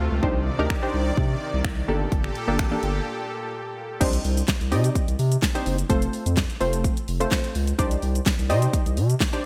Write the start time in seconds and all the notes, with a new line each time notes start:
Already playing: C3 A3 F4
0.12 C#2
0.23 C2 D#3 D4 D#4 G4 C5 D5, kick
0.59 D2 D4 D#4 G4 A#4
0.70 finger snap, kick
0.82 D4 D#4 G4 C5
0.94 C2
1.17 C3, kick
1.54 C2
1.64 C2, finger snap, kick
1.88 G1 A#2 A#3 D4 G4 A4
2.12 G1, kick, closed hi-hat
2.24 finger snap
2.35 closed hi-hat
2.48 G1 A#3 D4 G4 A4
2.59 A1, finger snap, kick, closed hi-hat
2.71 A#3 D4 G4 A4
2.83 G1, closed hi-hat
4.00 C2 C4 D4 D#4 G4 C5, kick, closed hi-hat, crash, shaker
4.13 closed hi-hat, shaker
4.24 C2, open hi-hat, shaker
4.37 closed hi-hat, shaker
4.48 kick, snare, clap, closed hi-hat, shaker
4.61 C2, closed hi-hat, shaker
4.71 C3 C4 D#4 G4 D5 D#5, open hi-hat, shaker
4.84 closed hi-hat, shaker
4.95 kick, closed hi-hat, shaker
5.08 C2, closed hi-hat, shaker
5.19 C3, open hi-hat, shaker
5.32 closed hi-hat, shaker
5.42 kick, snare, clap, closed hi-hat, shaker
5.55 C4 D4 D#4 G4 C5, closed hi-hat, shaker
5.66 F#1, open hi-hat, shaker
5.78 closed hi-hat, shaker
5.89 F1 A3 C4 F4 A4 C5, kick, closed hi-hat, shaker
6.02 closed hi-hat, shaker
6.13 open hi-hat, shaker
6.26 F2, closed hi-hat, shaker
6.37 kick, snare, clap, closed hi-hat, shaker
6.50 closed hi-hat, shaker
6.60 F1 A3 C4 F4 A4 C5, open hi-hat, shaker
6.73 closed hi-hat, shaker
6.84 kick, closed hi-hat, shaker
6.97 closed hi-hat, shaker
7.08 F1, open hi-hat, shaker
7.20 A3 C4 F4 A4 C5, closed hi-hat, shaker
7.31 kick, snare, clap, closed hi-hat, shaker
7.44 closed hi-hat, shaker
7.55 C#2, open hi-hat, shaker
7.67 closed hi-hat, shaker
7.78 C2 D4 D#4 G4 C5 D5, kick, closed hi-hat, shaker
7.91 closed hi-hat, shaker
8.02 C2, open hi-hat, shaker
8.15 closed hi-hat, shaker
8.26 kick, snare, clap, closed hi-hat, shaker
8.39 C2, closed hi-hat, shaker
8.49 C3 D#4 G4 C5 D5 D#5, open hi-hat, shaker
8.62 closed hi-hat, shaker
8.73 kick, closed hi-hat, shaker
8.86 C2, closed hi-hat, shaker
8.97 C3, open hi-hat, shaker
9.10 closed hi-hat, shaker
9.21 kick, snare, clap, closed hi-hat, shaker
9.33 D4 D#4 G4 C5 D5, closed hi-hat, shaker